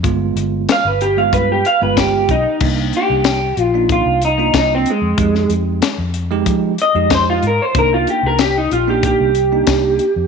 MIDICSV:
0, 0, Header, 1, 5, 480
1, 0, Start_track
1, 0, Key_signature, -3, "minor"
1, 0, Tempo, 642398
1, 34, Time_signature, 4, 2, 24, 8
1, 7675, End_track
2, 0, Start_track
2, 0, Title_t, "Clean electric guitar"
2, 0, Program_c, 0, 27
2, 539, Note_on_c, 0, 77, 120
2, 646, Note_off_c, 0, 77, 0
2, 653, Note_on_c, 0, 71, 72
2, 759, Note_off_c, 0, 71, 0
2, 760, Note_on_c, 0, 67, 86
2, 876, Note_off_c, 0, 67, 0
2, 882, Note_on_c, 0, 77, 77
2, 993, Note_off_c, 0, 77, 0
2, 999, Note_on_c, 0, 71, 88
2, 1116, Note_off_c, 0, 71, 0
2, 1135, Note_on_c, 0, 67, 74
2, 1240, Note_off_c, 0, 67, 0
2, 1242, Note_on_c, 0, 77, 104
2, 1358, Note_off_c, 0, 77, 0
2, 1366, Note_on_c, 0, 71, 64
2, 1475, Note_off_c, 0, 71, 0
2, 1488, Note_on_c, 0, 67, 61
2, 1714, Note_off_c, 0, 67, 0
2, 1725, Note_on_c, 0, 63, 81
2, 1953, Note_off_c, 0, 63, 0
2, 2218, Note_on_c, 0, 67, 79
2, 2696, Note_off_c, 0, 67, 0
2, 2696, Note_on_c, 0, 65, 79
2, 2905, Note_off_c, 0, 65, 0
2, 2930, Note_on_c, 0, 65, 77
2, 3156, Note_off_c, 0, 65, 0
2, 3175, Note_on_c, 0, 63, 75
2, 3398, Note_off_c, 0, 63, 0
2, 3420, Note_on_c, 0, 63, 74
2, 3527, Note_off_c, 0, 63, 0
2, 3547, Note_on_c, 0, 60, 81
2, 3646, Note_off_c, 0, 60, 0
2, 3663, Note_on_c, 0, 56, 75
2, 4115, Note_off_c, 0, 56, 0
2, 5093, Note_on_c, 0, 75, 87
2, 5317, Note_off_c, 0, 75, 0
2, 5338, Note_on_c, 0, 72, 83
2, 5446, Note_off_c, 0, 72, 0
2, 5453, Note_on_c, 0, 65, 83
2, 5559, Note_off_c, 0, 65, 0
2, 5582, Note_on_c, 0, 70, 65
2, 5693, Note_off_c, 0, 70, 0
2, 5693, Note_on_c, 0, 72, 85
2, 5799, Note_off_c, 0, 72, 0
2, 5818, Note_on_c, 0, 70, 87
2, 5926, Note_off_c, 0, 70, 0
2, 5932, Note_on_c, 0, 65, 89
2, 6039, Note_off_c, 0, 65, 0
2, 6052, Note_on_c, 0, 67, 77
2, 6174, Note_off_c, 0, 67, 0
2, 6174, Note_on_c, 0, 70, 76
2, 6279, Note_off_c, 0, 70, 0
2, 6284, Note_on_c, 0, 67, 94
2, 6399, Note_off_c, 0, 67, 0
2, 6409, Note_on_c, 0, 63, 81
2, 6517, Note_off_c, 0, 63, 0
2, 6520, Note_on_c, 0, 65, 86
2, 6636, Note_off_c, 0, 65, 0
2, 6648, Note_on_c, 0, 67, 88
2, 6756, Note_off_c, 0, 67, 0
2, 6767, Note_on_c, 0, 67, 94
2, 7675, Note_off_c, 0, 67, 0
2, 7675, End_track
3, 0, Start_track
3, 0, Title_t, "Tine electric piano"
3, 0, Program_c, 1, 4
3, 25, Note_on_c, 1, 56, 77
3, 27, Note_on_c, 1, 59, 73
3, 31, Note_on_c, 1, 65, 94
3, 587, Note_off_c, 1, 56, 0
3, 588, Note_off_c, 1, 59, 0
3, 590, Note_off_c, 1, 65, 0
3, 875, Note_on_c, 1, 56, 71
3, 878, Note_on_c, 1, 59, 67
3, 882, Note_on_c, 1, 65, 85
3, 1191, Note_off_c, 1, 56, 0
3, 1193, Note_off_c, 1, 59, 0
3, 1195, Note_off_c, 1, 65, 0
3, 1355, Note_on_c, 1, 56, 75
3, 1357, Note_on_c, 1, 59, 74
3, 1363, Note_on_c, 1, 65, 88
3, 1751, Note_off_c, 1, 56, 0
3, 1752, Note_off_c, 1, 59, 0
3, 1755, Note_off_c, 1, 65, 0
3, 1956, Note_on_c, 1, 58, 70
3, 1956, Note_on_c, 1, 62, 62
3, 1961, Note_on_c, 1, 63, 68
3, 2513, Note_off_c, 1, 58, 0
3, 2513, Note_off_c, 1, 62, 0
3, 2515, Note_off_c, 1, 63, 0
3, 2795, Note_on_c, 1, 58, 73
3, 2798, Note_on_c, 1, 62, 67
3, 2804, Note_on_c, 1, 63, 78
3, 3112, Note_off_c, 1, 58, 0
3, 3113, Note_off_c, 1, 62, 0
3, 3116, Note_off_c, 1, 63, 0
3, 3275, Note_on_c, 1, 58, 76
3, 3280, Note_on_c, 1, 62, 73
3, 3285, Note_on_c, 1, 65, 84
3, 3671, Note_off_c, 1, 58, 0
3, 3673, Note_off_c, 1, 62, 0
3, 3676, Note_off_c, 1, 65, 0
3, 3871, Note_on_c, 1, 56, 68
3, 3876, Note_on_c, 1, 63, 61
3, 3877, Note_on_c, 1, 67, 73
3, 4430, Note_off_c, 1, 56, 0
3, 4432, Note_off_c, 1, 63, 0
3, 4433, Note_off_c, 1, 67, 0
3, 4714, Note_on_c, 1, 56, 101
3, 4717, Note_on_c, 1, 63, 83
3, 4720, Note_on_c, 1, 67, 107
3, 5031, Note_off_c, 1, 56, 0
3, 5033, Note_off_c, 1, 63, 0
3, 5034, Note_off_c, 1, 67, 0
3, 5193, Note_on_c, 1, 56, 75
3, 5198, Note_on_c, 1, 63, 70
3, 5199, Note_on_c, 1, 67, 79
3, 5590, Note_off_c, 1, 56, 0
3, 5592, Note_off_c, 1, 63, 0
3, 5592, Note_off_c, 1, 67, 0
3, 5789, Note_on_c, 1, 58, 71
3, 5794, Note_on_c, 1, 62, 62
3, 5798, Note_on_c, 1, 63, 72
3, 6349, Note_off_c, 1, 58, 0
3, 6351, Note_off_c, 1, 62, 0
3, 6353, Note_off_c, 1, 63, 0
3, 6631, Note_on_c, 1, 58, 89
3, 6635, Note_on_c, 1, 62, 70
3, 6639, Note_on_c, 1, 63, 81
3, 6950, Note_off_c, 1, 58, 0
3, 6951, Note_off_c, 1, 62, 0
3, 6953, Note_off_c, 1, 63, 0
3, 7113, Note_on_c, 1, 58, 69
3, 7115, Note_on_c, 1, 62, 70
3, 7119, Note_on_c, 1, 63, 86
3, 7509, Note_off_c, 1, 58, 0
3, 7510, Note_off_c, 1, 62, 0
3, 7512, Note_off_c, 1, 63, 0
3, 7675, End_track
4, 0, Start_track
4, 0, Title_t, "Fingered electric bass"
4, 0, Program_c, 2, 33
4, 30, Note_on_c, 2, 31, 92
4, 254, Note_off_c, 2, 31, 0
4, 265, Note_on_c, 2, 31, 86
4, 491, Note_off_c, 2, 31, 0
4, 633, Note_on_c, 2, 31, 82
4, 965, Note_off_c, 2, 31, 0
4, 993, Note_on_c, 2, 43, 85
4, 1215, Note_off_c, 2, 43, 0
4, 1357, Note_on_c, 2, 31, 90
4, 1687, Note_off_c, 2, 31, 0
4, 1709, Note_on_c, 2, 35, 82
4, 1825, Note_off_c, 2, 35, 0
4, 1949, Note_on_c, 2, 36, 98
4, 2173, Note_off_c, 2, 36, 0
4, 2315, Note_on_c, 2, 36, 80
4, 2646, Note_off_c, 2, 36, 0
4, 2668, Note_on_c, 2, 34, 92
4, 3007, Note_off_c, 2, 34, 0
4, 3031, Note_on_c, 2, 36, 77
4, 3364, Note_off_c, 2, 36, 0
4, 3390, Note_on_c, 2, 36, 89
4, 3614, Note_off_c, 2, 36, 0
4, 3748, Note_on_c, 2, 41, 74
4, 3861, Note_off_c, 2, 41, 0
4, 3866, Note_on_c, 2, 41, 92
4, 4092, Note_off_c, 2, 41, 0
4, 4104, Note_on_c, 2, 41, 91
4, 4331, Note_off_c, 2, 41, 0
4, 4471, Note_on_c, 2, 41, 85
4, 4804, Note_off_c, 2, 41, 0
4, 4827, Note_on_c, 2, 53, 86
4, 5053, Note_off_c, 2, 53, 0
4, 5191, Note_on_c, 2, 41, 89
4, 5524, Note_off_c, 2, 41, 0
4, 5551, Note_on_c, 2, 44, 96
4, 5666, Note_off_c, 2, 44, 0
4, 5788, Note_on_c, 2, 36, 102
4, 6013, Note_off_c, 2, 36, 0
4, 6149, Note_on_c, 2, 36, 88
4, 6483, Note_off_c, 2, 36, 0
4, 6512, Note_on_c, 2, 34, 91
4, 6849, Note_off_c, 2, 34, 0
4, 6874, Note_on_c, 2, 36, 81
4, 7205, Note_off_c, 2, 36, 0
4, 7227, Note_on_c, 2, 36, 91
4, 7452, Note_off_c, 2, 36, 0
4, 7593, Note_on_c, 2, 41, 81
4, 7675, Note_off_c, 2, 41, 0
4, 7675, End_track
5, 0, Start_track
5, 0, Title_t, "Drums"
5, 31, Note_on_c, 9, 36, 98
5, 31, Note_on_c, 9, 42, 80
5, 105, Note_off_c, 9, 36, 0
5, 106, Note_off_c, 9, 42, 0
5, 274, Note_on_c, 9, 42, 58
5, 348, Note_off_c, 9, 42, 0
5, 513, Note_on_c, 9, 42, 80
5, 513, Note_on_c, 9, 54, 98
5, 517, Note_on_c, 9, 38, 104
5, 588, Note_off_c, 9, 42, 0
5, 588, Note_off_c, 9, 54, 0
5, 592, Note_off_c, 9, 38, 0
5, 753, Note_on_c, 9, 42, 59
5, 827, Note_off_c, 9, 42, 0
5, 992, Note_on_c, 9, 36, 77
5, 995, Note_on_c, 9, 42, 78
5, 1067, Note_off_c, 9, 36, 0
5, 1069, Note_off_c, 9, 42, 0
5, 1233, Note_on_c, 9, 42, 59
5, 1307, Note_off_c, 9, 42, 0
5, 1471, Note_on_c, 9, 36, 71
5, 1471, Note_on_c, 9, 42, 78
5, 1471, Note_on_c, 9, 54, 114
5, 1476, Note_on_c, 9, 38, 100
5, 1546, Note_off_c, 9, 36, 0
5, 1546, Note_off_c, 9, 42, 0
5, 1546, Note_off_c, 9, 54, 0
5, 1550, Note_off_c, 9, 38, 0
5, 1709, Note_on_c, 9, 42, 57
5, 1710, Note_on_c, 9, 36, 79
5, 1784, Note_off_c, 9, 36, 0
5, 1784, Note_off_c, 9, 42, 0
5, 1945, Note_on_c, 9, 49, 95
5, 1949, Note_on_c, 9, 36, 99
5, 2020, Note_off_c, 9, 49, 0
5, 2024, Note_off_c, 9, 36, 0
5, 2189, Note_on_c, 9, 42, 51
5, 2264, Note_off_c, 9, 42, 0
5, 2423, Note_on_c, 9, 42, 78
5, 2423, Note_on_c, 9, 54, 100
5, 2428, Note_on_c, 9, 38, 105
5, 2498, Note_off_c, 9, 42, 0
5, 2498, Note_off_c, 9, 54, 0
5, 2503, Note_off_c, 9, 38, 0
5, 2669, Note_on_c, 9, 42, 59
5, 2743, Note_off_c, 9, 42, 0
5, 2909, Note_on_c, 9, 36, 91
5, 2909, Note_on_c, 9, 42, 73
5, 2984, Note_off_c, 9, 36, 0
5, 2984, Note_off_c, 9, 42, 0
5, 3150, Note_on_c, 9, 42, 64
5, 3225, Note_off_c, 9, 42, 0
5, 3391, Note_on_c, 9, 36, 75
5, 3392, Note_on_c, 9, 42, 80
5, 3392, Note_on_c, 9, 54, 103
5, 3396, Note_on_c, 9, 38, 105
5, 3466, Note_off_c, 9, 36, 0
5, 3466, Note_off_c, 9, 42, 0
5, 3466, Note_off_c, 9, 54, 0
5, 3471, Note_off_c, 9, 38, 0
5, 3630, Note_on_c, 9, 42, 56
5, 3704, Note_off_c, 9, 42, 0
5, 3869, Note_on_c, 9, 36, 106
5, 3869, Note_on_c, 9, 42, 87
5, 3944, Note_off_c, 9, 36, 0
5, 3944, Note_off_c, 9, 42, 0
5, 3997, Note_on_c, 9, 38, 30
5, 4072, Note_off_c, 9, 38, 0
5, 4107, Note_on_c, 9, 42, 60
5, 4182, Note_off_c, 9, 42, 0
5, 4348, Note_on_c, 9, 42, 80
5, 4348, Note_on_c, 9, 54, 107
5, 4353, Note_on_c, 9, 38, 108
5, 4423, Note_off_c, 9, 42, 0
5, 4423, Note_off_c, 9, 54, 0
5, 4427, Note_off_c, 9, 38, 0
5, 4587, Note_on_c, 9, 42, 66
5, 4662, Note_off_c, 9, 42, 0
5, 4827, Note_on_c, 9, 42, 87
5, 4828, Note_on_c, 9, 36, 86
5, 4902, Note_off_c, 9, 42, 0
5, 4903, Note_off_c, 9, 36, 0
5, 5068, Note_on_c, 9, 42, 61
5, 5143, Note_off_c, 9, 42, 0
5, 5307, Note_on_c, 9, 42, 85
5, 5307, Note_on_c, 9, 54, 106
5, 5308, Note_on_c, 9, 36, 76
5, 5312, Note_on_c, 9, 38, 100
5, 5382, Note_off_c, 9, 42, 0
5, 5382, Note_off_c, 9, 54, 0
5, 5383, Note_off_c, 9, 36, 0
5, 5386, Note_off_c, 9, 38, 0
5, 5548, Note_on_c, 9, 42, 54
5, 5623, Note_off_c, 9, 42, 0
5, 5789, Note_on_c, 9, 42, 79
5, 5790, Note_on_c, 9, 36, 109
5, 5864, Note_off_c, 9, 36, 0
5, 5864, Note_off_c, 9, 42, 0
5, 6031, Note_on_c, 9, 42, 50
5, 6106, Note_off_c, 9, 42, 0
5, 6266, Note_on_c, 9, 42, 84
5, 6266, Note_on_c, 9, 54, 110
5, 6270, Note_on_c, 9, 38, 113
5, 6341, Note_off_c, 9, 42, 0
5, 6341, Note_off_c, 9, 54, 0
5, 6345, Note_off_c, 9, 38, 0
5, 6511, Note_on_c, 9, 42, 59
5, 6586, Note_off_c, 9, 42, 0
5, 6747, Note_on_c, 9, 42, 79
5, 6749, Note_on_c, 9, 36, 91
5, 6822, Note_off_c, 9, 42, 0
5, 6823, Note_off_c, 9, 36, 0
5, 6984, Note_on_c, 9, 42, 63
5, 7058, Note_off_c, 9, 42, 0
5, 7223, Note_on_c, 9, 42, 86
5, 7223, Note_on_c, 9, 54, 104
5, 7228, Note_on_c, 9, 36, 85
5, 7228, Note_on_c, 9, 38, 116
5, 7298, Note_off_c, 9, 42, 0
5, 7298, Note_off_c, 9, 54, 0
5, 7302, Note_off_c, 9, 36, 0
5, 7302, Note_off_c, 9, 38, 0
5, 7465, Note_on_c, 9, 42, 61
5, 7540, Note_off_c, 9, 42, 0
5, 7675, End_track
0, 0, End_of_file